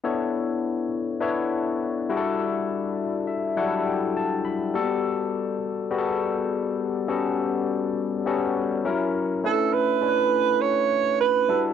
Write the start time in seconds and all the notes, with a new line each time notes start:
0.04 B3 D4 E4 A4 C#5
1.20 B3 D4 E4 A4 C#5
2.09 G3 D4 E4 F#4 G#4
2.17 A4
3.27 E5
3.56 F#3 D4 E4 F#4 A4 F#5
3.63 G3
3.87 G5
4.17 A5
4.45 B5
4.74 G3 A#3 F#4 A4
4.81 B3
5.91 G3 B3 F#4 G#4
5.98 A4
7.08 G3 B3 C#4 F#4 A4
8.26 G3 B3 C#4 F#4 A4
8.85 F#3 C#4 E4 A#4
9.44 A3 C#4 D4 E4 A4 B4
9.74 B4
10.01 A3 C#4 D4 E4 A4
10.09 B4
10.61 C#5
11.21 B4
11.48 G3 D4 E4 F#4 A4